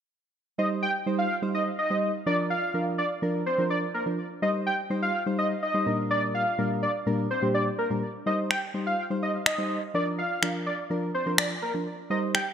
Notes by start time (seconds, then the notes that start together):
0.58 G3 D#4 C5 D#5
0.82 G5
1.06 G3 D#4 C5
1.19 F5
1.42 G3 D#4 C5
1.54 D#5
1.79 D#5
1.90 G3 D#4 C5
2.26 F3 D4 A#4 D5
2.50 F5
2.74 F3 D4 A#4
2.98 D5
3.22 F3 D4 A#4
3.46 C5
3.58 F3 D4 A#4
3.70 D5
3.94 A#4
4.06 F3 D4 A#4
4.42 G3 D#4 C5 D#5
4.66 G5
4.90 G3 D#4 C5
5.02 F5
5.26 G3 D#4 C5
5.38 D#5
5.63 D#5
5.74 G3 D#4 C5
5.86 A#2 G3 D4 A#4
6.11 D5
6.35 F5
6.58 A#2 G3 D4 A#4
6.83 D5
7.06 A#2 G3 D4 A#4
7.31 C5
7.42 A#2 G3 D4 G4
7.55 D5
7.79 A#4
7.90 A#2 G3 D4 A#4
8.26 G3 D#4 C5 D#5
8.50 G5, finger snap
8.74 G3 D#4 C5
8.87 F5
9.10 G3 D#4 C5
9.23 D#5
9.46 D#5, finger snap
9.58 G3 D#4 C5
9.94 F3 D4 A#4 D5
10.18 F5
10.42 F3 D4 A#4, finger snap
10.66 D5
10.90 F3 D4 A#4
11.14 C5
11.26 F3 D4 A#4
11.38 D5, finger snap
11.62 A#4
11.74 F3 D4 A#4
12.10 G3 D#4 C5 D#5
12.34 G5, finger snap